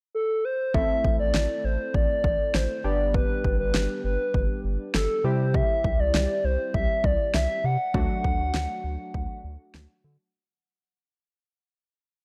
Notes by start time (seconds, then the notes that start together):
0.15 A4
0.45 C5
0.74 A1 A3 C4 E4 A4 E5, kick
1.04 A1, kick
1.19 A1 D5
1.34 A1, snare
1.64 A1 C5
1.94 A1 D5, kick
2.24 A1, kick
2.54 A1 C5, snare
2.84 G1 G3 B3 D4 G4 D5
3.14 B4, kick
3.44 G1, kick
3.59 G1 B4
3.74 G1, snare
4.04 G1 B4
4.34 G1, kick
4.64 G1
4.94 G1 A4, snare
5.24 C3 G3 C4 E4 G4 C5
5.54 E5, kick
5.84 C2, kick
5.99 C2 D5
6.14 C2, snare
6.44 C2 C5
6.74 C2 E5, kick
7.04 C2 D5, kick
7.34 C2 E5, snare
7.64 C3 F#5
7.94 D2 F#3 A3 D4 F#4, kick
8.24 D2, kick
8.39 D2
8.54 D2, snare
8.84 D2
9.14 D2, kick
9.44 D2
9.74 D2, snare
10.04 D3